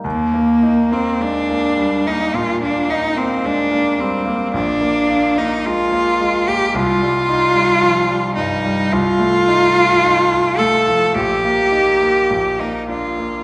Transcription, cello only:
X:1
M:4/4
L:1/16
Q:1/4=54
K:Eb
V:1 name="Cello"
B,3 C D3 E F D E C D2 C2 | D3 E F3 G F6 E2 | F6 =A2 G4- G E F2 |]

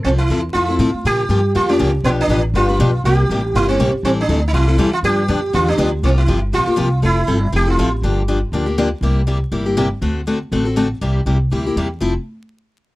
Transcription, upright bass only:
X:1
M:4/4
L:1/8
Q:"Swing" 1/4=241
K:F
V:1 name="Upright bass" clef=bass
C,,2 E,,2 F,,2 A,, z | B,,2 G,,2 F,,2 _D,,2 | =B,,,2 A,,,2 G,,,2 B,,,2 | C,,2 A,,,2 G,,,2 B,,, z |
A,,,2 D,,2 C,,2 E,,2 | G,,2 F,,2 E,,2 D,,2 | C,,2 G,,,2 B,,, z C,,2 | F,,,2 G,,,2 F,,,2 A,,,2 |
G,,,4 D,,4 | C,,4 G,,,4 | D,,4 A,,,4 | C,,2 C,,2 D,,2 E,,2 |
F,,, z6 z |]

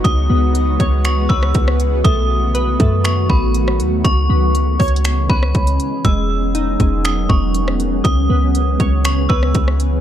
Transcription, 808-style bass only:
X:1
M:4/4
L:1/8
Q:1/4=120
K:C#m
V:1 name="808-style bass" clef=bass
C,, C,,2 C,,2 C,, C,,2 | B,,,3 F,,2 A,,,2 D,, | C,, C,,2 C,,2 C,, C,, z | E,,,3 E,,,2 E,,,3 |
C,, C,,2 C,,2 C,, C,,2 |]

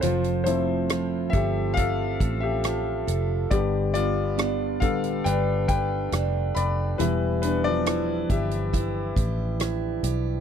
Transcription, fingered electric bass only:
X:1
M:4/4
L:1/8
Q:1/4=69
K:Gmix
V:1 name="Fingered electric bass" clef=bass
F,,,3 G,,,2 A,,,2 F,,, | G,,,3 A,,, G,,,2 F,,, F,,, | E,,,3 G,,,2 A,,,2 B,,, |]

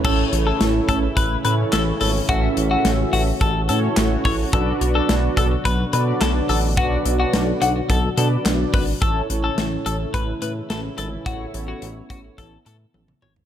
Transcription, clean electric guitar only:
X:1
M:4/4
L:1/16
Q:1/4=107
K:A
V:1 name="Clean electric guitar"
A2 z A2 z A z B2 B z A z A z | F2 z F2 z F z A2 A z3 c z | A2 z A2 z A z B2 B z A z A z | F2 z F2 z F z A2 A z3 B z |
A2 z A2 z A z B2 B z A z A z | F2 z F2 z F z A2 A z3 c z |]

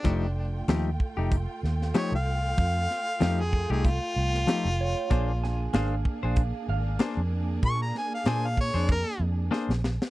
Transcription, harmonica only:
X:1
M:4/4
L:1/16
Q:"Swing 16ths" 1/4=95
K:Bbmix
V:1 name="Harmonica"
D4 z8 _d f3- | f4- f A2 A F8- | F4 z12 | _d' b a f a f _d2 B2 z6 |]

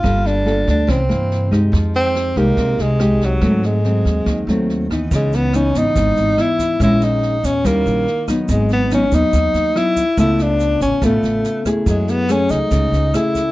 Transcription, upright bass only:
X:1
M:4/4
L:1/16
Q:1/4=142
K:Ab
V:1 name="Upright bass" clef=bass
G,,,6 =D,,2 C,,2 G,,6 | F,,6 C,,2 C,,2 C,,6 | A,,6 E,,2 E,,2 E,,6 | [K:C#m] C,,6 G,,, z G,,,2 G,,,2 z4 |
^A,,,6 E,,2 D,,2 A,,,2 z4 | G,,,6 D,, z D,,2 D,,2 z4 | C,,6 A,,, z A,,,2 A,,,2 z4 | F,,6 C,, z C,,2 C,,2 z4 |]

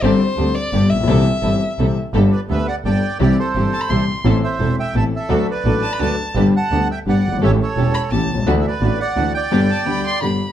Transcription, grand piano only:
X:1
M:3/4
L:1/16
Q:1/4=171
K:C
V:1 name="Grand piano" clef=bass
[G,,,G,,D,G,CG]2 z2 [D,,D,G,CG]2 z2 [G,,,G,,D,G,B,G]2 z/2 A,,,/2 _B,,,/2 =B,,,/2 | [C,,C,E,A,CG]2 z2 [G,,,G,,E,A,CG]2 z2 [C,,C,E,A,CG]2 z2 | [K:G] [G,,,G,,D,A,B,G]2 z2 [D,,D,A,B,G]2 z2 [G,,,G,,D,A,B,G]2 z2 | [C,,C,E,G,CG]2 z2 [G,,,G,,E,G,CG]2 z2 [C,,C,E,G,CG]2 z2 |
[A,,,A,,E,A,CA]2 z2 [E,,,E,,E,A,CA]2 z2 [A,,,A,,E,A,CA]2 z2 | [D,,D,F,A,DA]2 z2 [A,,,A,,F,A,DA]2 z2 [D,,D,F,A,DA]2 z2 | [G,,,G,,D,G,B,G]2 z2 [D,,D,G,B,G]2 z2 [G,,,G,,D,G,B,G]2 z/2 F,,,/2 G,,,/2 _A,,,/2 | [A,,,A,,E,A,^CG]2 z2 [E,,,E,,E,A,CG]2 z2 [A,,,A,,E,A,CG]2 z/2 B,,,/2 =C,,/2 ^C,,/2 |
[D,,D,E,A,DF]2 z2 [A,,,A,,E,A,DF]2 z2 [D,,D,E,A,DF]2 z2 | [G,,,G,,D,G,B,G]2 z2 [D,,D,G,B,G]2 z2 [G,,,G,,D,G,B,G]2 z2 |]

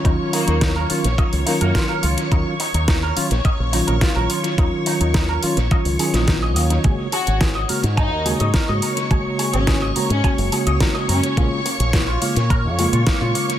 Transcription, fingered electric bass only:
X:1
M:4/4
L:1/16
Q:1/4=106
K:Ebm
V:1 name="Fingered electric bass" clef=bass
E,, z2 E,,3 z B,,, z D,, z G,, z2 D,, z | E,, z2 E,,3 z B,,, z B,,, z B,,, z B,,, z2 | E,, z2 E,,3 z B,,, z D,, z B,,,3 E,, z | A,,, z2 A,,,3 z A,,2 E,, z A,, z A,, z2 |
A,,, z2 A,,,3 z A,, z G,,, z D,, z2 G,, z | B,,, z2 B,,,3 z B,,2 F,, z B,, z B,, z2 |]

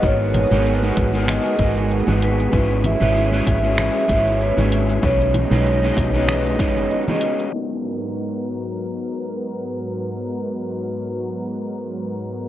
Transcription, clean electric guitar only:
X:1
M:4/4
L:1/16
Q:"Swing 16ths" 1/4=96
K:G#m
V:1 name="Clean electric guitar"
[G,B,DFA]3 [G,B,DFA]2 [G,B,DFA]2 [G,B,DFA]3 [G,B,DFA]3 [G,B,DFG]3 | [G,CEFB]3 [G,CEFB]2 [G,CEFB]2 [G,CEFB]3 [G,CEFB]3 [G,CEFG]3 | [G,CDFB]3 [G,CDFB]2 [G,CDFB]2 [G,CDFB]3 [G,CDFB]3 [G,CDFG]3 | [G,B,DFA]16- |
[G,B,DFA]16 |]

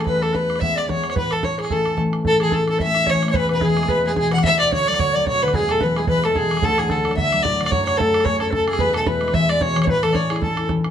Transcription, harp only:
X:1
M:4/4
L:1/8
Q:"Swing" 1/4=220
K:A
V:1 name="Harp" clef=bass
E,,4 [E,G,B,]2 [E,G,B,]2 | A,,4 [E,A,C]2 [E,A,C]2 | A,, E, A, C A, C E, A, | E,, B,, E, G, E, G, B,, E, |
D,, B,, D, F, D, F, B,, D, | E,, B,, E, G, E, G, B,, E, | D,, A,, D, F, D, F, A,, D, | F,, C, A, z A, C C, A, |
E,, B,, E, G, E, G, B,, E, | A,, E, C E C E E, C |]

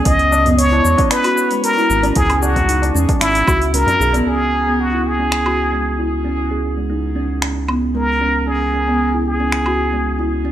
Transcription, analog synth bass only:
X:1
M:4/4
L:1/8
Q:1/4=114
K:C#dor
V:1 name="Analog synth bass" clef=bass
C,,3 E,, z3 G,,, | C,,3 E,, G,,, C,, C,, B,,, | C,,8- | C,,8- |
C,,8 |]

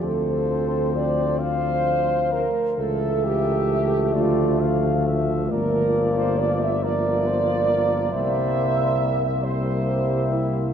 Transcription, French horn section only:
X:1
M:6/8
L:1/16
Q:3/8=44
K:Dm
V:1 name="French horn section"
A4 d2 c4 B2 | A2 G4 F4 z2 | B3 c d e d6 | e6 c4 E2 |]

